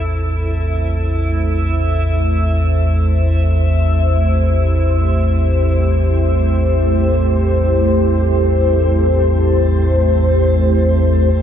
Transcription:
0.00 11.34 A1 medium
0.00 11.34 E2 medium
0.00 11.42 A3 medium
0.00 11.37 E4 medium
0.00 11.42 E4 medium
0.00 3.23 A4 medium
0.00 11.42 C5 medium
0.00 11.37 E5 medium
2.92 11.42 G4 medium
11.35 11.42 A1 medium
11.35 11.42 E2 medium

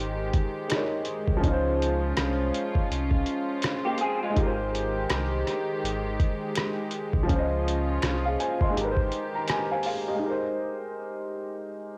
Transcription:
0.00 0.31 G#1 loud
0.00 1.40 D#3 medium
0.00 0.63 G#3 medium
0.00 4.32 G#3 medium
0.00 0.65 D#4 medium
0.00 0.67 G4 medium
0.00 1.40 G4 medium
0.00 0.69 A#4 medium
0.00 0.71 C5 medium
0.00 10.17 C5 medium
0.33 kick loud
0.33 closed hi-hat medium
0.68 1.43 G#3 medium
0.68 1.43 D#4 medium
0.68 1.44 G4 soft
0.68 finger snap medium
0.68 cross-stick loud
0.68 closed hi-hat medium
0.74 1.45 A#4 soft
0.74 0.81 C#5 medium
0.82 1.50 D#5 medium
1.05 closed hi-hat medium
1.28 1.42 C2 medium
1.28 kick medium
1.37 4.29 F3 medium
1.37 4.31 C#4 medium
1.42 2.13 C#2 loud
1.42 4.33 C#4 medium
1.42 4.33 D#4 medium
1.42 4.33 F4 medium
1.42 kick loud
1.42 closed hi-hat medium
1.48 4.35 F4 medium
1.48 4.37 C5 medium
1.82 closed hi-hat medium
2.17 2.51 C2 loud
2.17 finger snap medium
2.17 cross-stick loud
2.17 closed hi-hat medium
2.54 closed hi-hat medium
2.75 kick medium
2.91 3.24 C2 medium
2.91 closed hi-hat medium
3.11 kick medium
3.26 closed hi-hat medium
3.62 finger snap medium
3.62 cross-stick loud
3.62 closed hi-hat medium
3.85 4.00 A#3 medium
3.85 3.99 G4 medium
3.98 4.21 G#4 medium
3.98 closed hi-hat medium
4.02 4.22 C4 medium
4.23 4.57 G#3 medium
4.23 4.57 F4 medium
4.30 7.22 G#3 medium
4.34 5.06 G#1 loud
4.34 7.26 D#3 medium
4.34 10.17 G#3 medium
4.34 7.24 D#4 medium
4.34 7.26 G4 medium
4.34 kick loud
4.34 closed hi-hat medium
4.42 7.28 A#4 medium
4.46 7.30 C5 medium
4.75 closed hi-hat medium
5.10 5.44 C2 loud
5.10 finger snap medium
5.10 cross-stick loud
5.10 closed hi-hat medium
5.47 cross-stick soft
5.47 closed hi-hat medium
5.83 6.17 G#1 medium
5.83 closed hi-hat medium
6.20 kick loud
6.20 closed hi-hat medium
6.56 finger snap medium
6.56 cross-stick loud
6.56 closed hi-hat medium
6.91 closed hi-hat medium
7.13 7.28 C2 medium
7.13 kick medium
7.23 8.69 F3 medium
7.23 8.71 C#4 medium
7.29 7.99 C#2 loud
7.29 8.74 C#4 medium
7.29 8.74 F4 medium
7.29 8.73 F4 medium
7.29 kick loud
7.29 closed hi-hat medium
7.35 8.04 C5 medium
7.39 8.06 D#5 medium
7.68 closed hi-hat medium
8.02 8.37 C2 medium
8.02 finger snap medium
8.02 cross-stick loud
8.02 closed hi-hat medium
8.26 8.39 G#4 medium
8.26 8.39 F5 medium
8.40 8.61 C5 medium
8.40 8.60 G#5 medium
8.40 closed hi-hat medium
8.61 8.96 D#5 medium
8.61 8.96 C6 medium
8.61 kick loud
8.69 10.13 G#3 medium
8.69 10.17 D#4 medium
8.75 9.10 G#1 loud
8.75 10.20 D#3 medium
8.75 10.20 G4 medium
8.75 9.12 G4 medium
8.75 closed hi-hat medium
8.81 9.14 A#4 medium
8.81 8.88 B4 medium
8.91 9.19 C5 medium
8.97 kick medium
9.12 closed hi-hat medium
9.35 9.69 A#5 medium
9.48 9.69 G#5 medium
9.48 finger snap medium
9.48 cross-stick loud
9.48 closed hi-hat medium
9.71 9.85 C5 medium
9.71 9.84 F5 medium
9.71 9.85 G#5 medium
9.83 10.07 G#4 medium
9.83 10.06 F5 medium
9.83 open hi-hat soft
10.08 10.21 G4 medium
10.08 10.42 D#5 medium
10.14 11.98 G#3 medium
10.14 11.98 D#4 medium
10.22 11.98 G4 medium
10.22 11.98 A#4 medium
10.30 11.98 C5 medium

